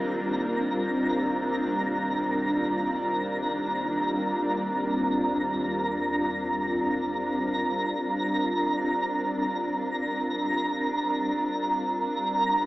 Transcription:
0.00 0.56 A#1 medium
0.00 4.51 D#3 medium
0.00 12.66 G3 medium
0.00 4.51 A#3 medium
0.00 12.66 C4 medium
0.00 12.01 D4 medium
0.00 12.66 F4 medium
0.00 12.66 A#4 medium
0.00 4.37 A#5 medium
0.59 4.36 C2 medium
4.38 8.17 D#2 medium
4.38 12.66 A#5 medium
8.23 11.99 G1 medium
12.02 12.66 A#1 medium
12.02 12.66 D4 medium

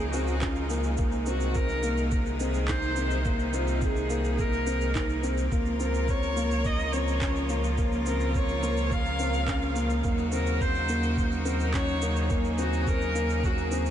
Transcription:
0.00 0.96 C#2 medium
0.00 0.95 C#3 medium
0.00 0.95 F3 medium
0.00 5.48 G#3 medium
0.00 0.96 D#4 medium
0.00 0.14 G#4 medium
0.00 0.95 G#4 medium
0.13 0.32 C4 medium
0.13 0.43 F#4 medium
0.13 shaker medium
0.28 shaker soft
0.41 0.60 C#4 medium
0.41 0.84 F4 medium
0.41 kick loud
0.41 clap medium
0.41 shaker soft
0.56 shaker soft
0.70 0.89 A#3 medium
0.70 shaker medium
0.84 shaker soft
0.97 5.49 C2 medium
0.97 5.47 C3 medium
0.97 5.47 D#3 medium
0.97 1.17 A#3 medium
0.97 10.00 A#3 medium
0.97 5.47 D#4 medium
0.97 kick loud
0.97 shaker soft
1.12 shaker soft
1.26 1.64 C4 medium
1.26 1.57 F#4 medium
1.26 shaker medium
1.40 shaker soft
1.55 2.12 A#4 loud
1.55 kick loud
1.55 shaker soft
1.69 shaker soft
1.83 2.20 A#3 medium
1.83 shaker medium
1.97 shaker soft
2.11 kick loud
2.11 shaker soft
2.26 shaker soft
2.40 2.59 C4 medium
2.40 2.70 G#4 medium
2.40 shaker medium
2.54 shaker soft
2.68 2.87 D#4 medium
2.68 3.25 C5 loud
2.68 kick loud
2.68 clap medium
2.68 shaker soft
2.82 shaker soft
2.96 3.15 C4 medium
2.96 shaker medium
3.11 shaker soft
3.25 3.44 A#3 medium
3.25 kick loud
3.25 shaker soft
3.39 shaker soft
3.54 3.91 C4 medium
3.54 3.85 F4 medium
3.54 shaker medium
3.68 shaker soft
3.82 4.42 G#4 loud
3.82 kick loud
3.82 shaker soft
3.96 shaker soft
4.10 4.47 A#3 medium
4.10 shaker medium
4.25 shaker soft
4.39 5.24 A#4 loud
4.39 kick loud
4.39 shaker soft
4.53 shaker soft
4.66 4.85 C4 medium
4.66 shaker medium
4.81 shaker soft
4.95 5.14 D#4 medium
4.95 kick loud
4.95 clap medium
4.95 shaker soft
5.10 shaker soft
5.23 5.42 C4 medium
5.23 shaker medium
5.38 shaker soft
5.51 10.02 C#2 medium
5.51 13.90 C#3 medium
5.51 10.00 F3 medium
5.51 5.70 A#3 medium
5.51 10.00 F4 medium
5.51 7.75 A#4 medium
5.51 kick loud
5.51 shaker soft
5.66 shaker soft
5.79 6.17 C4 medium
5.79 6.11 A#4 medium
5.79 shaker medium
5.94 shaker soft
6.08 6.68 C#5 loud
6.08 kick loud
6.08 shaker soft
6.23 shaker soft
6.36 6.74 A#3 medium
6.36 shaker medium
6.51 shaker soft
6.65 6.95 D#5 loud
6.65 kick loud
6.65 shaker soft
6.79 shaker soft
6.93 7.12 C4 medium
6.93 7.50 C#5 loud
6.93 shaker medium
7.08 shaker soft
7.21 7.40 C#4 medium
7.21 kick loud
7.21 clap medium
7.21 shaker soft
7.36 shaker soft
7.49 7.68 A#3 medium
7.49 shaker medium
7.64 shaker soft
7.78 7.96 A#3 loud
7.78 10.02 A#4 medium
7.78 kick loud
7.78 shaker soft
7.92 shaker soft
8.06 8.44 C4 medium
8.06 8.37 A#4 medium
8.06 shaker medium
8.20 shaker soft
8.35 8.94 C#5 loud
8.35 kick medium
8.35 shaker soft
8.49 shaker soft
8.63 9.00 A#3 medium
8.63 shaker medium
8.77 shaker soft
8.91 9.77 F5 loud
8.91 kick loud
8.91 shaker soft
9.06 shaker soft
9.19 9.38 C4 medium
9.19 shaker medium
9.34 shaker soft
9.48 9.66 C#4 medium
9.48 kick loud
9.48 clap medium
9.48 shaker soft
9.62 shaker soft
9.76 9.94 A#3 medium
9.76 shaker medium
9.90 shaker soft
10.04 13.90 D#2 medium
10.04 13.90 F#3 medium
10.04 10.23 A#3 loud
10.04 13.90 A#3 medium
10.04 13.90 D#4 medium
10.04 12.29 F#4 medium
10.04 kick loud
10.04 shaker soft
10.18 shaker soft
10.32 10.70 C4 medium
10.32 10.63 A#4 loud
10.32 shaker medium
10.47 shaker soft
10.61 11.18 C5 loud
10.61 kick medium
10.61 shaker soft
10.75 shaker soft
10.89 11.26 A#3 medium
10.89 shaker medium
11.03 shaker soft
11.17 kick medium
11.17 shaker soft
11.32 shaker soft
11.45 11.64 C4 medium
11.45 11.75 A#4 medium
11.45 shaker medium
11.60 shaker soft
11.74 11.93 C#4 medium
11.74 12.30 C#5 loud
11.74 kick loud
11.74 clap medium
11.74 shaker soft
11.88 shaker soft
12.02 12.21 A#3 medium
12.02 shaker medium
12.17 shaker soft
12.30 12.49 A#3 medium
12.30 13.90 G#4 medium
12.30 kick loud
12.30 shaker soft
12.44 shaker soft
12.58 12.96 C4 medium
12.58 12.89 F#4 loud
12.58 shaker medium
12.73 shaker soft
12.87 13.46 A#4 loud
12.87 kick loud
12.87 shaker soft
13.01 shaker soft
13.15 13.52 A#3 medium
13.15 shaker medium
13.30 shaker soft
13.44 13.90 F#4 loud
13.44 kick loud
13.44 shaker soft
13.58 shaker soft
13.71 13.90 C4 medium
13.71 shaker medium
13.86 shaker soft

